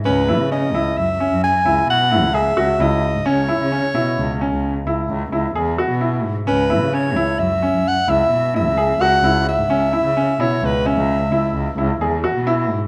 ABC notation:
X:1
M:7/4
L:1/16
Q:1/4=131
K:C#m
V:1 name="Soprano saxophone"
B4 d4 e4 g4 f4 e4 d4 | c12 z16 | B4 c4 e4 f2 e4 e4 f4 e2- | e6 c2 B2 e8 z8 z2 |]
V:2 name="Grand piano"
C2 E2 C2 E4 C4 E4 E2 G2 F2 E4 | C2 E2 C2 E4 C4 E4 E2 G2 F2 E4 | C2 E2 C2 E4 C4 E4 E2 G2 F2 E4 | C2 E2 C2 E4 C4 E4 E2 G2 F2 E4 |]
V:3 name="Cello" clef=bass
C,,3 C,3 C,, z F,,2 z F,,2 z C,,2 B,,3 C,,3 C,, z C,,2 z G,, | C,,3 C,2 z B,, z C,,2 z C,,2 z C,, z C,,2 C,,2 E,,3 B,,3 G,, z | C,,3 C,3 C,, z F,,2 z F,,2 z C,,2 B,,3 C,,3 C,, z C,,2 z G,, | C,,3 C,2 z B,, z C,,2 z C,,2 z C,, z C,,2 C,,2 E,,3 B,,3 G,, z |]